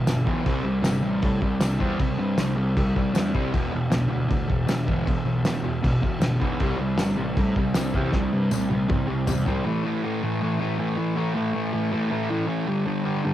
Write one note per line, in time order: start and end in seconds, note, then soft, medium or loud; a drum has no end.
0.07 0.24 G1 medium
0.07 0.25 E2 medium
0.07 0.26 B2 medium
0.07 snare loud
0.07 tambourine medium
0.07 crash medium
0.26 0.43 B1 medium
0.26 0.45 E2 medium
0.26 0.45 B2 medium
0.26 0.45 E3 medium
0.26 kick medium
0.46 0.63 C2 medium
0.46 0.62 C3 medium
0.46 0.64 G3 loud
0.46 0.65 C4 medium
0.46 kick loud
0.46 crash medium
0.64 0.81 C2 medium
0.64 0.81 C3 medium
0.64 0.82 G3 medium
0.82 1.00 G1 medium
0.82 1.01 C3 medium
0.82 1.01 G3 medium
0.82 snare loud
0.82 tambourine medium
0.82 crash medium
1.03 1.20 A1 medium
1.03 1.21 C3 medium
1.03 1.21 G3 medium
1.22 1.40 A2 loud
1.22 1.40 C3 medium
1.22 1.40 G3 medium
1.22 kick loud
1.22 crash medium
1.41 1.59 C2 medium
1.41 1.59 C3 medium
1.41 1.59 G3 medium
1.41 kick medium
1.60 1.77 C2 medium
1.60 1.78 C3 medium
1.60 1.79 G3 medium
1.60 snare loud
1.60 tambourine loud
1.60 crash medium
1.79 1.97 E2 medium
1.79 1.98 C3 medium
1.79 1.98 G3 medium
1.79 1.98 C4 loud
1.79 kick medium
1.99 2.16 C2 medium
1.99 2.17 C3 medium
1.99 2.17 G3 medium
1.99 kick loud
1.99 crash medium
2.18 2.35 G2 medium
2.18 2.36 C3 medium
2.18 2.36 G3 medium
2.38 2.54 C2 medium
2.38 2.55 C3 medium
2.38 2.56 G3 medium
2.38 snare loud
2.38 tambourine loud
2.38 crash medium
2.56 2.74 C2 medium
2.56 2.74 C3 medium
2.56 2.74 G3 medium
2.77 2.93 C2 medium
2.77 2.94 C3 medium
2.77 2.94 G3 medium
2.77 kick loud
2.77 crash medium
2.96 3.12 C2 medium
2.96 3.12 C3 medium
2.96 3.13 G3 medium
2.96 kick medium
3.14 3.31 E2 medium
3.14 3.32 C3 medium
3.14 3.32 G3 medium
3.14 snare loud
3.14 tambourine loud
3.14 crash medium
3.34 3.51 C2 medium
3.34 3.52 C3 medium
3.34 3.53 G3 medium
3.34 3.53 C4 loud
3.34 kick medium
3.52 3.70 E1 medium
3.52 3.70 E2 medium
3.52 3.71 B2 medium
3.52 3.72 E3 loud
3.52 kick loud
3.52 crash medium
3.72 3.89 E1 medium
3.72 3.89 E2 medium
3.72 3.89 B2 medium
3.90 4.08 B1 medium
3.90 4.08 E2 medium
3.90 4.08 B2 medium
3.90 snare loud
3.90 tambourine medium
3.90 crash medium
4.09 4.27 D2 medium
4.09 4.27 E2 medium
4.09 4.27 B2 medium
4.29 4.47 D2 medium
4.29 4.46 E2 medium
4.29 4.47 B2 medium
4.29 kick loud
4.29 crash medium
4.48 4.66 E1 medium
4.48 4.66 E2 medium
4.48 4.66 B2 medium
4.48 kick medium
4.67 4.85 E1 loud
4.67 4.85 E2 medium
4.67 4.85 B2 medium
4.67 snare loud
4.67 tambourine medium
4.67 crash medium
4.87 5.04 G1 medium
4.87 5.05 E2 medium
4.87 5.06 B2 loud
4.87 5.06 E3 loud
4.87 kick medium
5.07 5.24 E1 loud
5.07 5.24 E2 medium
5.07 5.24 B2 medium
5.07 kick loud
5.07 crash medium
5.25 5.42 B1 medium
5.25 5.43 E2 medium
5.25 5.43 B2 medium
5.45 5.61 E1 loud
5.45 5.63 E2 medium
5.45 5.63 B2 medium
5.45 snare loud
5.45 tambourine medium
5.45 crash medium
5.62 5.80 E1 medium
5.62 5.81 E2 medium
5.62 5.82 B2 medium
5.83 6.00 E1 loud
5.83 6.00 E2 medium
5.83 6.00 B2 medium
5.83 kick loud
5.83 crash medium
6.02 6.19 E1 medium
6.02 6.20 E2 medium
6.02 6.20 B2 medium
6.02 kick medium
6.20 6.37 G1 medium
6.20 6.38 E2 medium
6.20 6.39 B2 medium
6.20 snare loud
6.20 tambourine medium
6.20 crash medium
6.40 6.58 B1 loud
6.40 6.58 E2 medium
6.40 6.59 B2 medium
6.40 6.59 E3 loud
6.40 kick medium
6.60 6.76 C2 loud
6.60 6.78 C3 medium
6.60 6.78 G3 loud
6.60 6.79 C4 loud
6.60 kick loud
6.60 crash medium
6.77 6.94 C2 medium
6.77 6.97 C3 medium
6.77 6.97 G3 medium
6.97 7.14 G1 medium
6.97 7.16 C3 medium
6.97 7.16 G3 medium
6.97 snare loud
6.97 tambourine medium
6.97 crash medium
7.17 7.34 A1 medium
7.17 7.34 C3 medium
7.17 7.35 G3 medium
7.37 7.53 A2 medium
7.37 7.54 C3 medium
7.37 7.54 G3 loud
7.37 kick loud
7.37 crash medium
7.56 7.72 C2 medium
7.56 7.73 C3 medium
7.56 7.73 G3 medium
7.56 kick medium
7.74 7.91 C2 medium
7.74 7.92 C3 medium
7.74 7.92 G3 medium
7.74 snare loud
7.74 tambourine loud
7.74 crash medium
7.94 8.10 E2 loud
7.94 8.12 C3 medium
7.94 8.13 G3 medium
7.94 8.13 C4 loud
7.94 kick medium
8.13 8.30 C2 loud
8.13 8.30 C3 medium
8.13 8.31 G3 medium
8.13 kick loud
8.13 snare medium
8.33 8.49 G2 medium
8.33 8.50 C3 medium
8.33 8.50 G3 medium
8.51 8.68 C2 loud
8.51 8.69 C3 medium
8.51 8.69 G3 medium
8.51 high tom medium
8.51 tambourine loud
8.70 8.88 C2 medium
8.70 8.87 C3 medium
8.70 8.87 G3 medium
8.70 high tom medium
8.89 9.06 C2 medium
8.89 9.06 C3 medium
8.89 9.06 G3 medium
8.89 kick loud
8.89 mid tom medium
9.08 9.25 C2 medium
9.08 9.25 C3 medium
9.08 9.25 G3 medium
9.27 9.44 E2 medium
9.27 9.44 C3 medium
9.27 9.45 G3 medium
9.27 floor tom loud
9.27 tambourine medium
9.46 9.63 C2 loud
9.46 9.64 C3 medium
9.46 9.65 G3 loud
9.46 9.65 C4 loud
9.46 floor tom medium
9.65 9.84 A2 loud
9.65 9.85 E3 loud
9.65 9.86 A3 loud
9.84 10.04 A2 medium
9.84 10.04 E3 medium
9.84 10.05 A3 loud
10.04 10.23 A2 medium
10.04 10.23 E3 medium
10.04 10.24 A3 medium
10.23 10.41 A2 medium
10.23 10.41 E3 medium
10.23 10.42 A3 medium
10.42 10.58 A2 loud
10.42 10.59 E3 loud
10.42 10.60 A3 loud
10.60 10.77 A2 medium
10.60 10.77 E3 medium
10.60 10.78 A3 medium
10.78 10.95 A2 medium
10.78 10.96 E3 medium
10.78 10.97 A3 medium
10.97 11.15 A2 medium
10.97 11.15 E3 loud
10.97 11.16 A3 medium
11.16 11.33 A2 medium
11.16 11.35 E3 loud
11.16 11.35 A3 loud
11.34 11.53 A2 medium
11.34 11.54 E3 medium
11.34 11.54 A3 loud
11.54 11.72 A2 medium
11.54 11.73 E3 medium
11.54 11.73 A3 medium
11.73 11.91 A2 medium
11.73 11.92 E3 medium
11.73 11.93 A3 loud
11.92 12.09 A2 loud
11.92 12.10 E3 loud
11.92 12.10 A3 loud
12.10 12.28 A2 medium
12.10 12.29 E3 loud
12.10 12.30 A3 loud
12.29 12.45 A2 medium
12.29 12.46 E3 medium
12.29 12.47 A3 medium
12.47 12.66 A2 medium
12.47 12.67 E3 medium
12.47 12.67 A3 medium
12.67 12.85 G2 loud
12.67 12.85 D3 loud
12.67 12.87 G3 loud
12.86 13.04 G2 medium
12.86 13.04 D3 loud
12.86 13.05 G3 loud
13.04 13.24 G2 medium
13.04 13.24 D3 medium
13.04 13.25 G3 loud
13.24 13.34 G2 medium
13.24 13.34 D3 medium
13.24 13.34 G3 loud